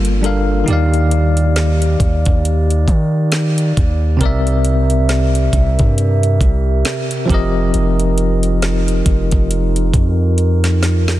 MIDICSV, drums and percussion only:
0, 0, Header, 1, 2, 480
1, 0, Start_track
1, 0, Tempo, 882353
1, 368, Time_signature, 4, 2, 24, 8
1, 6092, End_track
2, 0, Start_track
2, 0, Title_t, "Drums"
2, 26, Note_on_c, 9, 42, 58
2, 81, Note_off_c, 9, 42, 0
2, 131, Note_on_c, 9, 42, 57
2, 185, Note_off_c, 9, 42, 0
2, 368, Note_on_c, 9, 42, 66
2, 422, Note_off_c, 9, 42, 0
2, 509, Note_on_c, 9, 42, 47
2, 564, Note_off_c, 9, 42, 0
2, 606, Note_on_c, 9, 42, 67
2, 660, Note_off_c, 9, 42, 0
2, 744, Note_on_c, 9, 42, 56
2, 799, Note_off_c, 9, 42, 0
2, 849, Note_on_c, 9, 42, 65
2, 850, Note_on_c, 9, 38, 115
2, 903, Note_off_c, 9, 42, 0
2, 904, Note_off_c, 9, 38, 0
2, 989, Note_on_c, 9, 42, 49
2, 1043, Note_off_c, 9, 42, 0
2, 1088, Note_on_c, 9, 36, 102
2, 1090, Note_on_c, 9, 42, 73
2, 1142, Note_off_c, 9, 36, 0
2, 1144, Note_off_c, 9, 42, 0
2, 1227, Note_on_c, 9, 42, 52
2, 1232, Note_on_c, 9, 36, 108
2, 1281, Note_off_c, 9, 42, 0
2, 1286, Note_off_c, 9, 36, 0
2, 1333, Note_on_c, 9, 42, 77
2, 1388, Note_off_c, 9, 42, 0
2, 1471, Note_on_c, 9, 42, 53
2, 1526, Note_off_c, 9, 42, 0
2, 1565, Note_on_c, 9, 36, 96
2, 1568, Note_on_c, 9, 42, 61
2, 1619, Note_off_c, 9, 36, 0
2, 1622, Note_off_c, 9, 42, 0
2, 1804, Note_on_c, 9, 42, 63
2, 1807, Note_on_c, 9, 38, 123
2, 1859, Note_off_c, 9, 42, 0
2, 1861, Note_off_c, 9, 38, 0
2, 1947, Note_on_c, 9, 42, 59
2, 2001, Note_off_c, 9, 42, 0
2, 2052, Note_on_c, 9, 36, 101
2, 2052, Note_on_c, 9, 42, 57
2, 2106, Note_off_c, 9, 36, 0
2, 2107, Note_off_c, 9, 42, 0
2, 2289, Note_on_c, 9, 36, 120
2, 2289, Note_on_c, 9, 42, 60
2, 2343, Note_off_c, 9, 36, 0
2, 2343, Note_off_c, 9, 42, 0
2, 2431, Note_on_c, 9, 42, 47
2, 2485, Note_off_c, 9, 42, 0
2, 2527, Note_on_c, 9, 42, 68
2, 2582, Note_off_c, 9, 42, 0
2, 2665, Note_on_c, 9, 42, 55
2, 2719, Note_off_c, 9, 42, 0
2, 2769, Note_on_c, 9, 42, 67
2, 2770, Note_on_c, 9, 38, 118
2, 2824, Note_off_c, 9, 42, 0
2, 2825, Note_off_c, 9, 38, 0
2, 2911, Note_on_c, 9, 42, 47
2, 2965, Note_off_c, 9, 42, 0
2, 3008, Note_on_c, 9, 36, 96
2, 3009, Note_on_c, 9, 42, 81
2, 3062, Note_off_c, 9, 36, 0
2, 3064, Note_off_c, 9, 42, 0
2, 3149, Note_on_c, 9, 42, 50
2, 3152, Note_on_c, 9, 36, 98
2, 3203, Note_off_c, 9, 42, 0
2, 3207, Note_off_c, 9, 36, 0
2, 3253, Note_on_c, 9, 42, 76
2, 3307, Note_off_c, 9, 42, 0
2, 3391, Note_on_c, 9, 42, 52
2, 3445, Note_off_c, 9, 42, 0
2, 3485, Note_on_c, 9, 36, 92
2, 3489, Note_on_c, 9, 42, 58
2, 3539, Note_off_c, 9, 36, 0
2, 3543, Note_off_c, 9, 42, 0
2, 3726, Note_on_c, 9, 42, 69
2, 3728, Note_on_c, 9, 38, 124
2, 3780, Note_off_c, 9, 42, 0
2, 3783, Note_off_c, 9, 38, 0
2, 3867, Note_on_c, 9, 42, 57
2, 3921, Note_off_c, 9, 42, 0
2, 3968, Note_on_c, 9, 36, 108
2, 3973, Note_on_c, 9, 42, 59
2, 4023, Note_off_c, 9, 36, 0
2, 4027, Note_off_c, 9, 42, 0
2, 4210, Note_on_c, 9, 42, 68
2, 4264, Note_off_c, 9, 42, 0
2, 4350, Note_on_c, 9, 42, 47
2, 4404, Note_off_c, 9, 42, 0
2, 4448, Note_on_c, 9, 42, 67
2, 4502, Note_off_c, 9, 42, 0
2, 4586, Note_on_c, 9, 42, 57
2, 4640, Note_off_c, 9, 42, 0
2, 4691, Note_on_c, 9, 42, 70
2, 4692, Note_on_c, 9, 38, 114
2, 4746, Note_off_c, 9, 38, 0
2, 4746, Note_off_c, 9, 42, 0
2, 4831, Note_on_c, 9, 42, 51
2, 4886, Note_off_c, 9, 42, 0
2, 4928, Note_on_c, 9, 36, 95
2, 4928, Note_on_c, 9, 42, 78
2, 4982, Note_off_c, 9, 36, 0
2, 4982, Note_off_c, 9, 42, 0
2, 5067, Note_on_c, 9, 42, 52
2, 5072, Note_on_c, 9, 36, 105
2, 5122, Note_off_c, 9, 42, 0
2, 5126, Note_off_c, 9, 36, 0
2, 5172, Note_on_c, 9, 42, 81
2, 5226, Note_off_c, 9, 42, 0
2, 5310, Note_on_c, 9, 42, 53
2, 5364, Note_off_c, 9, 42, 0
2, 5405, Note_on_c, 9, 36, 88
2, 5407, Note_on_c, 9, 42, 64
2, 5459, Note_off_c, 9, 36, 0
2, 5461, Note_off_c, 9, 42, 0
2, 5646, Note_on_c, 9, 42, 63
2, 5700, Note_off_c, 9, 42, 0
2, 5787, Note_on_c, 9, 42, 60
2, 5788, Note_on_c, 9, 38, 67
2, 5842, Note_off_c, 9, 38, 0
2, 5842, Note_off_c, 9, 42, 0
2, 5889, Note_on_c, 9, 38, 93
2, 5893, Note_on_c, 9, 42, 56
2, 5944, Note_off_c, 9, 38, 0
2, 5948, Note_off_c, 9, 42, 0
2, 6028, Note_on_c, 9, 38, 95
2, 6082, Note_off_c, 9, 38, 0
2, 6092, End_track
0, 0, End_of_file